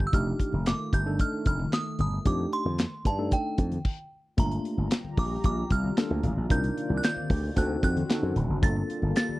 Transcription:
Already playing: analog synth pad F4
0.00 kick
0.07 synth bell E6
0.13 slap bass F1, analog synth pad D#3 A3, tine electric piano A3 D4 D#4 G4, synth bell F6, kick, closed hi-hat, muted conga, low conga
0.40 kick, closed hi-hat
0.52 slap bass F1, high conga
0.66 synth bell D6, snare, clap, closed hi-hat
0.79 muted conga
0.93 slap bass G1, tine electric piano D#4 G4, synth bell G6, kick, closed hi-hat
1.06 tine electric piano A3 D4 D#4 A4
1.19 synth bell F6, kick, closed hi-hat
1.33 muted conga
1.45 slap bass F1, synth bell F6, kick, closed hi-hat
1.59 high conga
1.73 synth bell D#6, snare, clap, closed hi-hat
1.99 slap bass G1, synth bell D#6, closed hi-hat, high conga, low conga
2.25 slap bass F2, tine electric piano A3 D4 D#4 G4, synth bell D6, kick, closed hi-hat, low conga
2.39 muted conga
2.53 synth bell C6, closed hi-hat
2.65 slap bass F2, high conga
2.78 snare, clap, closed hi-hat, muted conga
3.05 slap bass G2, tine electric piano D#4 G4, synth bell A5, kick, closed hi-hat
3.18 tine electric piano A3 D4 D#4 A4
3.31 synth bell G5, kick, closed hi-hat
3.58 slap bass F2, kick, closed hi-hat
3.72 closed hi-hat, high conga
3.85 kick, crash
4.37 slap bass G1, analog synth pad G3 F4 G4 A#5, tine electric piano A3 A#3 D4 F4, synth bell A#5, kick, closed hi-hat, muted conga, low conga
4.51 closed hi-hat, muted conga
4.65 closed hi-hat
4.78 slap bass G1, high conga
4.91 snare, clap, closed hi-hat, muted conga
5.05 muted conga, high conga
5.17 slap bass A#1, synth bell D6, kick, open hi-hat
5.44 slap bass A#1, synth bell D6, kick, closed hi-hat, muted conga
5.57 muted conga
5.70 slap bass C2, synth bell F6, kick, closed hi-hat
5.84 high conga
5.97 tine electric piano A#3 D4 F4 A4, snare, clap, closed hi-hat
6.10 slap bass D2, muted conga
6.23 slap bass A1, closed hi-hat, high conga, low conga
6.37 slap bass A#1
6.50 slap bass C2, analog synth pad C3 D#3 A#3 D5, tine electric piano D4 D#4 F4 A#4, synth bell G6, kick, closed hi-hat, muted conga, low conga
6.64 closed hi-hat
6.78 closed hi-hat
6.90 slap bass C2, high conga
6.97 synth bell F#6
7.03 synth bell G6, snare, clap, closed hi-hat, muted conga
7.17 muted conga, high conga
7.30 slap bass D2, kick, open hi-hat
7.56 slap bass D2, analog synth pad D3 C4 F#4, tine electric piano C4 D#4 F#4 A4, synth bell F#6, kick, closed hi-hat
7.70 muted conga
7.83 slap bass F2, synth bell F#6, kick, closed hi-hat
7.96 closed hi-hat, high conga
8.09 tine electric piano C4 D#4 F#4 A4, snare, clap, closed hi-hat
8.23 slap bass F#2, muted conga
8.36 slap bass D#1, closed hi-hat, high conga, low conga
8.50 slap bass F#1
8.62 slap bass G1, analog synth pad G3 A#3 F4 A4, tine electric piano A#3 D4 F4 A4, synth bell A6, kick, closed hi-hat, muted conga, low conga
8.76 muted conga
8.90 closed hi-hat
9.02 slap bass G1, high conga
9.16 synth bell A6, snare, clap, closed hi-hat
9.29 muted conga, high conga

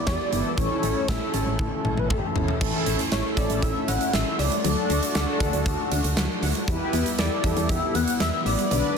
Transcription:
Already playing: analog synth pad G3 B3 E4
0.07 fm bass E2, synth pluck G4, analog synth lead D5, kick, snare, closed hi-hat
0.32 fm bass G1, synth pluck E3, analog polysynth B3 E4 A4, closed hi-hat
0.58 fm bass A1, synth pluck E3, analog synth pad A3 C#4, analog polysynth C#4 E4 A4, analog synth lead C#5, kick, closed hi-hat
0.83 fm bass A1, synth pluck E3, closed hi-hat
1.08 fm bass A1, synth pluck A3, analog synth lead E5, kick, snare, closed hi-hat
1.34 fm bass A1, synth pluck C#4, analog synth lead A4, closed hi-hat
1.47 fm bass A1
1.59 fm bass A1, synth pluck E3, kick, high tom
1.85 fm bass A1, synth pluck E3, mid tom
1.97 fm bass A1, analog synth lead B4, mid tom
2.08 fm bass A1, analog synth lead A4, synth pluck A4, kick, mid tom
2.17 analog synth lead G4
2.27 analog synth lead A4
2.36 fm bass G1, synth pluck E3, analog polysynth C#4 E4 A4, floor tom
2.48 floor tom
2.61 fm bass A1, synth pluck E3, analog synth pad A3 C#4 E4, analog polysynth C#4 E4 A4, kick, crash
2.86 fm bass A1, synth pluck C#4, closed hi-hat
2.99 closed hi-hat
3.12 fm bass A1, analog polysynth C#4 E4 A4, analog synth lead C#5, synth pluck E5, snare, closed hi-hat
3.37 fm bass A1, analog synth lead D5, synth pluck E5, kick, closed hi-hat
3.50 fm bass A1, closed hi-hat
3.62 fm bass A1, analog synth lead E5, kick, closed hi-hat
3.88 fm bass A1, synth pluck C#4, analog synth lead F#5, closed hi-hat
4.01 closed hi-hat
4.13 fm bass A1, synth pluck E3, analog synth lead E5, snare, closed hi-hat
4.39 fm bass C#2, analog synth lead D5, synth pluck E5, open hi-hat
4.52 closed hi-hat
4.64 fm bass D2, synth pluck F#3, analog polysynth D4 F#4 A4, analog synth pad D4 F#4, closed hi-hat
4.90 fm bass D2, synth pluck D4, closed hi-hat
5.03 closed hi-hat
5.15 fm bass D2, analog polysynth D4 F#4 A4, synth pluck F#5, snare, closed hi-hat
5.40 fm bass D2, synth pluck F#5, kick, closed hi-hat
5.53 fm bass D2, closed hi-hat
5.66 fm bass D2, kick, closed hi-hat
5.92 fm bass D2, synth pluck D4, closed hi-hat
6.04 fm bass D2, closed hi-hat
6.17 fm bass D2, synth pluck F#3, snare, closed hi-hat
6.42 fm bass D2, synth pluck F#5, open hi-hat
6.55 closed hi-hat
6.68 fm bass E2, synth pluck E3, analog synth pad G3 B3 E4, analog polysynth E4 G4 B4, kick, closed hi-hat
6.93 fm bass E2, synth pluck B3, closed hi-hat
7.06 closed hi-hat
7.18 fm bass E2, analog polysynth E4 G4 A4, analog synth lead D5, synth pluck E5, snare, closed hi-hat
7.44 fm bass E2, synth pluck E5, kick, closed hi-hat
7.57 fm bass E2, closed hi-hat
7.69 fm bass E2, analog synth lead E5, kick, closed hi-hat
7.95 fm bass E2, synth pluck B3, analog synth lead F#5, closed hi-hat
8.08 closed hi-hat
8.20 fm bass E2, synth pluck E3, analog synth lead E5, snare, closed hi-hat
8.46 fm bass A1, analog synth lead D5, synth pluck E5, open hi-hat
8.59 closed hi-hat
8.71 fm bass B1, synth pluck D3, analog synth pad F#3 D4, analog polysynth D4 F#4 B4, closed hi-hat

